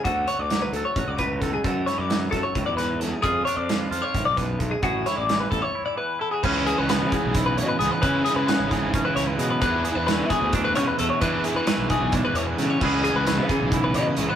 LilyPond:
<<
  \new Staff \with { instrumentName = "Clean electric guitar" } { \time 7/8 \key cis \phrygian \tempo 4 = 132 fis'8 cis''16 d''8 b'16 a'16 cis''8 d''16 b'8 a'16 gis'16 | fis'8 cis''16 d''8 b'16 a'16 cis''8 d''16 b'8 a'16 gis'16 | gis'8 cis''16 d''8 b'16 a'16 cis''8 d''16 b'8 a'16 gis'16 | fis'8 cis''16 d''8 b'16 a'16 cis''8 d''16 b'8 a'16 gis'16 |
b'8 gis'16 b'16 b'8 gis'8 r16 b'16 cis''16 b'16 gis'16 b'16 | b'8 gis'16 b'16 b'8 gis'8 r16 b'16 cis''16 b'16 gis'16 b'16 | b'8 gis'16 b'16 b'8 gis'8 r16 b'16 cis''16 b'16 a'16 cis''16 | b'8 gis'16 b'16 b'8 gis'8 r16 b'16 cis''16 b'16 a'16 cis''16 |
b'8 gis'16 b'16 b'8 gis'8 r16 b'16 cis''16 b'16 gis'16 b'16 | }
  \new Staff \with { instrumentName = "Overdriven electric guitar" } { \time 7/8 \key cis \phrygian r2. r8 | r2. r8 | r2. r8 | r2. r8 |
<cis e gis cis' gis'>2.~ <cis e gis cis' gis'>8 | <cis e gis cis' gis'>2.~ <cis e gis cis' gis'>8 | <e b d' gis'>2.~ <e b d' gis'>8 | <e b d' gis'>2.~ <e b d' gis'>8 |
<cis e gis cis' gis'>2.~ <cis e gis cis' gis'>8 | }
  \new Staff \with { instrumentName = "Clean electric guitar" } { \time 7/8 \key cis \phrygian << { a'8 fis'4 a'8 fis'4 a'8 | a'8 e'4 a'2 | eis'8 d'4 eis'2 | gis'8 e'4 a'8 e'4 e'16 fis'16 |
cis'16 e'8. b4 e'4 b8 | e'4 b4 cis'16 e'8. b8 | d'4 a4 d'4 a8 | d'4 a4 d'4 a8 |
<e b e' gis'>4 a16 b8. e'4 a16 b16 | } \\ { d4 fis4. a,4 | fis,4 fis4 a,8 gis,8 fis,8 | eis,4 eis4 eis,8 fis,8 gis,8 | a,4 e4. e,4 |
cis4. e4 gis,4 | cis4. e4 gis,4 | e,4. e4 b,4 | e,4. e4 b,4 |
cis4. e4 gis,4 | } >> }
  \new Staff \with { instrumentName = "Fingered electric bass" } { \clef bass \time 7/8 \key cis \phrygian d,8 r16 d,8. d,16 r16 a,,16 cis,4~ cis,16 | fis,8 r16 fis,8. fis,16 r16 cis,16 e,4~ e,16 | eis,8 r16 eis,8. eis,16 r16 gis,,16 b,,4~ b,,16 | a,,8 r16 a,,8. a,,16 r4. r16 |
cis,8. cis,8 cis16 r16 b,,8. b,16 r16 cis,16 r16 | cis8 r16 cis8 gis,,8 gis,,8 r16 cis,8 b,8 | e,8. e,8 e16 r16 d,8. cis16 r16 e,16 r16 | e8 r16 e8 b,,8 b,,8 r16 e,8 cis8 |
cis,8. cis,8 cis16 r16 b,,8. b,16 r16 cis,16 r16 | }
  \new DrumStaff \with { instrumentName = "Drums" } \drummode { \time 7/8 <hh bd>8 hh8 <hh sn>8 hh8 <hh bd>8 <hh bd>8 <hh bd sn>8 | <hh bd>8 <hh sn>8 <hh sn>8 <hh bd sn>8 <hh bd>8 <hh sn>8 <hh sn>8 | <hh bd>8 hh8 <hh sn>8 hh8 <hh bd>8 <hh bd sn>8 <hh bd>8 | <hh bd>8 <hh sn>8 <hh sn>8 <hh bd sn>8 r4. |
<cymc bd>8 hh8 <hh sn>8 <hh bd>8 <hh bd>8 hh8 <hh sn>8 | <hh bd>8 <hh sn>8 <hh sn>8 <hh bd sn>8 <hh bd>8 <hh sn>8 hh8 | <hh bd>8 hh8 <hh sn>8 <hh bd>8 <hh bd>8 <hh sn>8 hh8 | <hh bd>8 hh8 <hh sn>8 <hh bd>8 <hh bd sn>8 hh8 <hh sn>8 |
<cymc bd>8 hh8 <hh sn>8 <hh bd>8 <hh bd>8 hh8 hh8 | }
>>